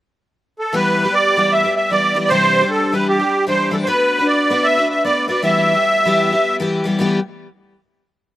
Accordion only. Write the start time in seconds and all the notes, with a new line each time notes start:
0.59 A4
0.75 B4
1.14 D5
1.53 E5
1.76 E5
1.92 D5
2.25 D5
2.30 C5
2.70 A4
2.93 B4
3.09 G4
3.48 C5
3.72 A4
3.84 B4 C5
4.27 D5
4.64 E5
4.90 E5
5.04 D5
5.28 D5
5.44 E5